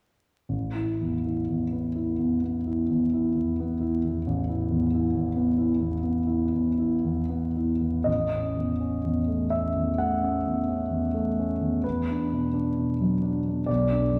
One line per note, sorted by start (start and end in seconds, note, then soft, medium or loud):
0.49 2.40 A1 soft
0.75 1.14 E4 soft
1.01 1.39 E2 soft
1.26 1.64 E4 soft
1.49 1.87 E2 soft
1.72 2.11 B3 soft
1.96 2.34 E4 soft
2.19 2.57 E2 soft
2.43 2.81 B3 soft
2.67 3.04 E4 soft
2.90 3.27 E2 soft
3.14 3.50 E4 soft
3.35 3.73 E2 soft
3.60 3.96 B3 soft
3.80 4.17 E4 soft
4.05 4.40 E2 soft
4.27 5.99 A1 soft
4.49 4.84 E4 soft
4.71 5.05 E2 soft
4.94 5.28 E4 soft
5.15 5.49 E2 soft
5.36 5.71 B3 soft
5.58 5.94 E4 soft
5.79 6.17 E2 soft
6.03 6.42 B3 soft
6.27 6.67 E4 soft
6.53 6.93 E2 soft
6.79 7.19 E4 soft
7.04 7.46 E2 soft
7.29 7.72 B3 soft
7.56 7.97 E4 soft
7.81 8.06 E2 soft
8.04 9.95 A1 soft
8.04 9.52 D#5 medium
8.31 8.71 C#4 soft
8.57 8.96 E2 soft
8.80 9.20 C#4 soft
9.04 9.43 E2 soft
9.28 9.67 A3 soft
9.50 9.90 C#4 soft
9.50 9.98 E5 soft
9.76 10.13 E2 soft
9.98 10.36 A3 soft
9.98 11.83 F#5 medium
10.23 10.59 C#4 soft
10.46 10.82 E2 soft
10.69 11.05 C#4 soft
10.91 11.27 E2 soft
11.14 11.51 A3 soft
11.39 11.75 C#4 soft
11.61 11.84 E2 soft
11.84 13.66 E2 soft
11.84 13.68 B4 medium
12.10 12.46 D4 soft
12.33 12.68 B2 soft
12.54 12.90 D4 soft
12.78 13.14 B2 soft
13.01 13.37 F#3 soft
13.22 13.59 D4 soft
13.48 13.69 B2 soft
13.66 14.19 B1 soft
13.66 14.19 D5 medium
13.91 14.19 D4 soft
14.12 14.19 F#2 soft